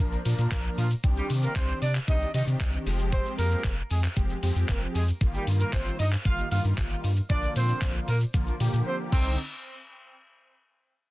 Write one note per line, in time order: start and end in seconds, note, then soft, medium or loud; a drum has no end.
0.00 0.16 A#1 loud
0.00 0.19 F3 loud
0.00 0.19 A#3 medium
0.00 0.20 D4 medium
0.00 0.20 A#4 loud
0.12 shaker medium
0.25 0.34 A#2 loud
0.25 0.86 F3 medium
0.25 0.86 A#3 medium
0.25 0.86 D4 medium
0.25 0.86 A#4 medium
0.25 open hi-hat medium
0.25 shaker medium
0.38 0.47 A#2 loud
0.38 shaker medium
0.51 0.69 A#1 loud
0.51 0.62 A#3 medium
0.51 0.62 A#4 medium
0.51 kick loud
0.51 clap loud
0.51 closed hi-hat medium
0.51 shaker medium
0.64 shaker medium
0.78 0.95 A#2 loud
0.78 0.88 F3 medium
0.78 0.88 F4 medium
0.78 open hi-hat medium
0.78 shaker medium
0.91 shaker medium
1.03 1.21 C2 loud
1.03 1.84 D#3 medium
1.03 1.84 C4 medium
1.03 1.84 D4 medium
1.03 1.84 G4 medium
1.03 kick loud
1.03 closed hi-hat medium
1.03 shaker medium
1.17 1.27 G3 medium
1.17 1.27 G4 medium
1.17 shaker medium
1.30 1.47 C3 loud
1.30 open hi-hat medium
1.30 shaker medium
1.43 1.54 A#3 medium
1.43 1.53 A#4 medium
1.43 shaker medium
1.56 1.73 C2 loud
1.56 1.77 C4 medium
1.56 1.76 C5 medium
1.56 kick loud
1.56 clap loud
1.56 closed hi-hat medium
1.56 shaker medium
1.69 shaker medium
1.82 1.99 C3 loud
1.82 1.93 D4 medium
1.82 1.92 D5 medium
1.82 open hi-hat medium
1.82 shaker medium
1.95 clap medium
1.95 shaker medium
2.08 2.25 C2 loud
2.08 2.28 D#3 medium
2.08 2.28 C4 medium
2.08 2.28 D4 medium
2.08 2.29 D#4 medium
2.08 2.28 G4 medium
2.08 2.28 D#5 loud
2.08 kick loud
2.08 closed hi-hat medium
2.08 shaker medium
2.21 shaker medium
2.34 2.43 C3 loud
2.34 2.86 D#3 medium
2.34 2.85 C4 medium
2.34 2.86 D4 medium
2.34 2.45 D#4 medium
2.34 2.85 G4 medium
2.34 2.44 D#5 medium
2.34 open hi-hat medium
2.34 shaker medium
2.47 2.56 C3 loud
2.47 shaker medium
2.60 2.77 C2 loud
2.60 kick loud
2.60 clap loud
2.60 closed hi-hat medium
2.60 shaker medium
2.73 shaker medium
2.86 3.20 F1 loud
2.86 3.70 F3 loud
2.86 3.70 G#3 medium
2.86 3.70 C4 medium
2.86 3.70 G4 loud
2.86 open hi-hat medium
2.86 shaker medium
2.99 shaker medium
3.12 3.33 C4 medium
3.12 3.33 C5 loud
3.12 kick loud
3.12 closed hi-hat medium
3.12 shaker medium
3.26 shaker medium
3.38 3.55 F2 loud
3.38 3.76 A#3 medium
3.38 3.75 A#4 medium
3.38 open hi-hat medium
3.38 shaker medium
3.52 shaker medium
3.64 3.81 F1 loud
3.64 kick loud
3.64 clap loud
3.64 closed hi-hat medium
3.64 shaker medium
3.78 shaker medium
3.91 4.08 F2 loud
3.91 4.01 G#3 medium
3.91 4.01 G#4 medium
3.91 open hi-hat medium
3.91 shaker medium
4.04 clap medium
4.04 shaker medium
4.17 4.34 F1 loud
4.17 4.37 F3 medium
4.17 4.37 G#3 medium
4.17 4.37 C4 medium
4.17 4.37 G4 loud
4.17 kick loud
4.17 closed hi-hat medium
4.17 shaker medium
4.30 shaker medium
4.43 4.51 F2 loud
4.43 5.03 F3 medium
4.43 5.03 G#3 medium
4.43 5.03 C4 medium
4.43 5.03 G4 loud
4.43 open hi-hat medium
4.43 shaker medium
4.56 4.64 F2 loud
4.56 shaker medium
4.69 4.86 F1 loud
4.69 4.79 A#3 medium
4.69 4.79 A#4 medium
4.69 kick loud
4.69 clap loud
4.69 closed hi-hat medium
4.69 shaker medium
4.82 shaker medium
4.95 5.12 F2 loud
4.95 5.06 G#3 medium
4.95 5.05 G#4 medium
4.95 open hi-hat medium
4.95 shaker medium
5.08 shaker medium
5.21 5.38 G1 loud
5.21 6.02 D#3 medium
5.21 6.02 G3 medium
5.21 6.02 A#3 medium
5.21 6.02 F4 medium
5.21 kick loud
5.21 closed hi-hat medium
5.21 shaker medium
5.34 5.45 G3 medium
5.34 5.44 G4 medium
5.34 shaker medium
5.47 5.64 G2 loud
5.47 open hi-hat medium
5.47 shaker medium
5.60 5.71 A#3 medium
5.60 5.70 A#4 medium
5.60 shaker medium
5.73 5.90 G1 loud
5.73 5.94 C4 medium
5.73 5.93 C5 medium
5.73 kick loud
5.73 clap loud
5.73 closed hi-hat medium
5.73 shaker medium
5.86 shaker medium
5.99 6.16 G2 loud
5.99 6.10 D#4 medium
5.99 6.09 D#5 medium
5.99 open hi-hat medium
5.99 shaker medium
6.12 clap medium
6.12 shaker medium
6.25 6.42 G1 loud
6.25 6.45 D#3 medium
6.25 6.46 G3 medium
6.25 6.46 A#3 medium
6.25 6.46 F4 medium
6.25 6.46 F5 loud
6.25 kick loud
6.25 closed hi-hat medium
6.25 shaker medium
6.39 shaker medium
6.51 6.60 G2 loud
6.51 7.12 D#3 medium
6.51 7.12 G3 medium
6.51 7.12 A#3 medium
6.51 7.12 F4 medium
6.51 6.62 F4 medium
6.51 6.62 F5 medium
6.51 open hi-hat medium
6.51 shaker medium
6.65 6.73 G2 loud
6.65 shaker medium
6.78 6.95 G1 loud
6.78 kick loud
6.78 clap loud
6.78 closed hi-hat medium
6.78 shaker medium
6.90 shaker medium
7.04 7.21 G2 loud
7.04 open hi-hat medium
7.04 shaker medium
7.17 shaker medium
7.30 7.47 A#1 loud
7.30 8.10 D3 medium
7.30 8.10 F3 medium
7.30 8.10 A#3 medium
7.30 7.50 D4 medium
7.30 8.10 F4 medium
7.30 7.50 D5 loud
7.30 kick loud
7.30 closed hi-hat medium
7.30 shaker medium
7.43 shaker medium
7.56 7.73 A#2 loud
7.56 7.93 C4 medium
7.56 7.93 C5 medium
7.56 open hi-hat medium
7.56 shaker medium
7.69 shaker medium
7.82 7.99 A#1 loud
7.82 kick loud
7.82 clap loud
7.82 closed hi-hat medium
7.82 shaker medium
7.95 shaker medium
8.08 8.25 A#2 medium
8.08 8.19 A#3 medium
8.08 8.18 A#4 medium
8.08 open hi-hat medium
8.08 shaker medium
8.21 shaker medium
8.34 8.51 A#1 loud
8.34 8.54 D3 medium
8.34 8.54 F3 medium
8.34 8.54 A#3 medium
8.34 8.54 F4 loud
8.34 kick loud
8.34 closed hi-hat medium
8.34 shaker medium
8.47 shaker medium
8.60 8.69 A#2 loud
8.60 9.11 D3 medium
8.60 9.12 F3 medium
8.60 9.12 A#3 medium
8.60 9.12 G4 medium
8.60 open hi-hat medium
8.60 shaker soft
8.73 8.82 A#2 loud
8.73 shaker medium
8.86 8.97 C4 medium
8.86 8.96 C5 medium
9.12 9.37 C2 loud
9.12 9.37 D3 medium
9.12 9.37 C4 medium
9.12 9.37 D#4 loud
9.12 kick loud
9.12 crash medium